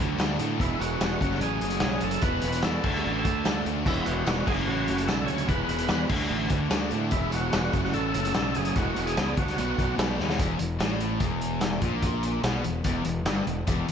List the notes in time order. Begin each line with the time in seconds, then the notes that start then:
Already playing: D3 F#3 A3 D4 F#4 A4
0.00 D2
0.18 D2 D3 F#3 A3 D4 F#4 A4, snare, closed hi-hat, tambourine
0.39 A2 D3 F#3 A3 D4 A4, closed hi-hat
0.59 E1 E2 B2 E3 G#3 B3 E4 G#4, kick, closed hi-hat
0.79 E1 F#4, closed hi-hat
1.00 E1 E3 B3 E4 G#4, snare, closed hi-hat, tambourine
1.20 F#1 F#2 C#3 F#3 A3 C#4 F#4, kick, closed hi-hat
1.31 snare
1.41 A1 F#3 A3 C#4 F#4 G#4, closed hi-hat
1.61 F#1, closed hi-hat
1.70 closed hi-hat
1.80 B1 F#2 C#3 F#3 A3 C#4, snare, closed hi-hat, tambourine
1.84 F#4
2.01 F#1 F#3 A3 C#4 A4, closed hi-hat
2.05 F#4
2.11 closed hi-hat
2.21 E1 E2 B2 E3 G#3 B3 G#4 B4, kick, closed hi-hat
2.25 E4
2.42 E1, closed hi-hat
2.52 closed hi-hat
2.62 E2 E3 G#3 B3 E4 A4, snare, closed hi-hat, tambourine
2.84 D2 D3 A3 D4 F#4, kick, crash
2.95 snare
3.05 A1 D3 A3 D4 F#4
3.25 D2, kick, closed hi-hat
3.45 D2 D3 A3 D4 F#4, snare, closed hi-hat, tambourine
3.65 D2 D3 A3 D4 F#4, closed hi-hat
3.85 E1 E2 B2 E3 G#3 B3 E4 G#4, kick, crash
4.05 E1 F#4, closed hi-hat
4.25 E1 E3 G#3 B3 E4 F#4, snare, closed hi-hat, tambourine
4.46 F#1 F#2 C#3 F#3 A3 C#4 F#4 G#4, kick, crash
4.67 A1 F#3 A3 C#4 F#4
4.88 F#1, closed hi-hat
4.98 closed hi-hat
5.07 B1 F#2 C#3 F#3 A3 C#4 F#4 A4, snare, closed hi-hat, tambourine
5.26 D2 F#3 A3 C#4 F#4 C#5, closed hi-hat
5.38 closed hi-hat
5.48 E1 E2 B2 E3 G#3 B3 E4 G#4 B4, kick, closed hi-hat
5.69 E1, closed hi-hat
5.79 closed hi-hat
5.88 E2 E3 G#3 B3 E4, snare, closed hi-hat, tambourine
6.09 D2 D3 A3 D4 F#4, kick, crash
6.20 snare
6.30 A1 D3 A3 D4 F#4
6.50 D2, kick, closed hi-hat
6.70 D2 D3 A3 D4 F#4, snare, closed hi-hat, tambourine
6.91 A2 D3 A3 D4 F#4, closed hi-hat
7.11 E1 E2 B2 E3 G#3 B3 E4 G#4, kick, closed hi-hat
7.32 E1 F#4, closed hi-hat
7.53 E1 E3 G#3 B3 E4, snare, closed hi-hat, tambourine
7.73 F#1 F#2 C#3 F#3 A3 C#4 F#4, kick, closed hi-hat
7.84 F#4, snare
7.93 A1 F#3 A3 C#4 F#4 A4, closed hi-hat
8.14 F#1, closed hi-hat
8.25 closed hi-hat
8.34 B1 F#2 C#3 F#3 A3 C#4 F#4, snare, closed hi-hat, tambourine
8.55 F#1 F#3 A3 C#4 F#4 G#4, closed hi-hat
8.65 closed hi-hat
8.76 E1 E2 B2 E3 G#3 B3 E4 F#4 G#4, kick, closed hi-hat
8.96 E1, closed hi-hat
9.06 G#4, closed hi-hat
9.17 C#2 E3 G#3 B3 E4, snare, closed hi-hat, tambourine
9.37 D2 D3 F#3 A3 D4 F#4, kick, closed hi-hat
9.48 snare, closed hi-hat
9.58 B1 B2 D#3 F#3 A3 B3 D#4 F#4, closed hi-hat
9.78 B1, kick, closed hi-hat
9.98 B1 B2 F#3 B3 D#4, snare, closed hi-hat, tambourine
10.17 D#2 B2 D#3 F#3 A3 B3 F#4, snare
10.21 D#4
10.30 snare
10.39 E1 E2, kick, closed hi-hat
10.59 E1 E2, closed hi-hat
10.80 A1 A2, snare, closed hi-hat
11.00 closed hi-hat
11.20 E1 E2, kick, closed hi-hat
11.41 closed hi-hat
11.61 snare, closed hi-hat
11.82 A#1 A#2, kick, closed hi-hat
12.02 kick, closed hi-hat
12.23 closed hi-hat
12.43 B1 B2, snare, closed hi-hat
12.64 E1 E2, closed hi-hat
12.84 E1 E2, kick, closed hi-hat
13.05 E1 E2, closed hi-hat
13.25 G1 G2, snare, closed hi-hat
13.47 E1 E2, closed hi-hat
13.67 E1 E2, kick, closed hi-hat, tambourine
13.88 E1 E2, closed hi-hat